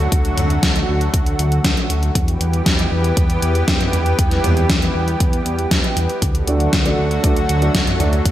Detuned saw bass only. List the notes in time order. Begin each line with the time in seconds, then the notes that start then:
0.12 D2
0.37 D2
0.63 D2
0.88 D2
1.14 D2
1.39 D2
1.64 D2
1.90 D2
2.15 E2
2.41 E2
2.66 E2
2.92 E2
3.17 E2
3.42 E2
3.68 E2
3.93 E2
4.19 E2
4.44 E2
4.69 E2
4.95 E2
5.20 E2
5.46 E2
5.71 E2
5.97 E2
6.22 D2
6.47 D2
6.73 D2
6.98 D2
7.24 D2
7.49 D2
7.75 D2
8.00 D2
8.25 D2